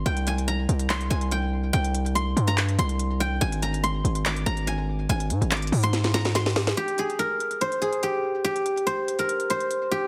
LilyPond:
<<
  \new Staff \with { instrumentName = "Guzheng" } { \time 4/4 \key aes \lydian \tempo 4 = 143 g''8 aes''8 bes''4 c'''8 aes''8 g''4 | g''4 c'''8. bes''16 r8 c'''4 g''8 | aes''8 bes''8 c'''4 d'''8 bes''8 aes''4 | aes''4 d'''8. c'''16 r8 bes''8 c'''4 |
g'8 aes'8 bes'4 c''8 aes'8 g'4 | g'4 c''8. bes'16 r8 c''4 g'8 | }
  \new Staff \with { instrumentName = "808-style bass" } { \clef bass \time 4/4 \key aes \lydian c,4. c,4 c,4. | c,4. g,4 c,4. | aes,,4. aes,,4 aes,,4. | aes,,8 aes,16 aes,,8. aes,2~ aes,8 |
r1 | r1 | }
  \new DrumStaff \with { instrumentName = "Drums" } \drummode { \time 4/4 hh16 hh16 hh16 hh16 hh8 hh16 hh16 <hc hh>16 hh16 hh16 hh16 hh4 | hh16 hh16 hh16 hh16 hh8 hh16 hh16 <hc hh>16 hh16 hh16 hh16 hh4 | hh16 hh16 hh16 hh16 hh8 hh16 hh16 <hc hh>16 hh16 hh16 hh16 hh4 | hh16 hh16 hh16 hh16 <hc hh>32 hh32 hh32 hh32 hho16 hh16 <hh sn>16 <hh sn>16 <hh sn>16 <hh sn>16 <hh sn>16 sn16 sn16 sn16 |
hh16 hh16 hh16 hh16 hh8 hh16 hh16 hh16 hh16 hh16 hh16 hh4 | hh16 hh16 hh16 hh16 hh8 hh16 hh16 hh16 hh16 hh16 hh16 hh4 | }
>>